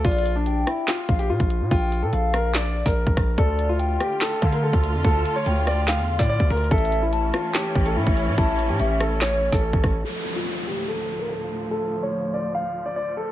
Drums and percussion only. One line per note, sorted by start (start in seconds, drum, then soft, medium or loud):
0.05 kick loud
0.05 closed hi-hat medium
0.12 closed hi-hat medium
0.19 closed hi-hat medium
0.26 closed hi-hat medium
0.46 closed hi-hat medium
0.67 cross-stick loud
0.67 closed hi-hat medium
0.88 snare loud
0.88 clap loud
1.09 kick loud
1.19 closed hi-hat medium
1.40 kick medium
1.40 closed hi-hat medium
1.50 closed hi-hat medium
1.71 kick loud
1.71 closed hi-hat medium
1.92 closed hi-hat medium
2.13 closed hi-hat medium
2.34 cross-stick loud
2.34 closed hi-hat medium
2.55 snare loud
2.55 clap loud
2.86 kick medium
2.86 snare medium
2.86 closed hi-hat medium
3.07 kick medium
3.17 kick loud
3.17 cross-stick loud
3.17 open hi-hat medium
3.38 kick loud
3.38 closed hi-hat medium
3.59 closed hi-hat medium
3.80 closed hi-hat medium
4.00 cross-stick medium
4.00 closed hi-hat medium
4.21 snare loud
4.21 clap loud
4.42 kick loud
4.53 closed hi-hat medium
4.73 kick medium
4.73 closed hi-hat medium
4.84 closed hi-hat medium
5.05 kick loud
5.05 closed hi-hat medium
5.26 closed hi-hat medium
5.46 closed hi-hat medium
5.67 cross-stick medium
5.67 closed hi-hat medium
5.88 snare loud
5.88 clap loud
6.19 kick medium
6.19 snare medium
6.19 closed hi-hat medium
6.40 kick medium
6.50 closed hi-hat soft
6.50 open hi-hat medium
6.57 closed hi-hat medium
6.64 closed hi-hat medium
6.71 kick loud
6.71 closed hi-hat medium
6.78 closed hi-hat medium
6.85 closed hi-hat medium
6.92 closed hi-hat medium
7.13 closed hi-hat medium
7.34 cross-stick loud
7.34 closed hi-hat medium
7.55 snare loud
7.55 clap loud
7.75 kick loud
7.86 closed hi-hat medium
8.07 kick medium
8.07 closed hi-hat medium
8.17 closed hi-hat medium
8.38 kick loud
8.38 closed hi-hat medium
8.59 closed hi-hat medium
8.80 closed hi-hat medium
9.00 cross-stick loud
9.00 closed hi-hat medium
9.21 snare loud
9.21 clap loud
9.52 kick medium
9.52 snare medium
9.52 closed hi-hat medium
9.73 kick medium
9.84 kick loud
9.84 cross-stick medium
9.84 open hi-hat medium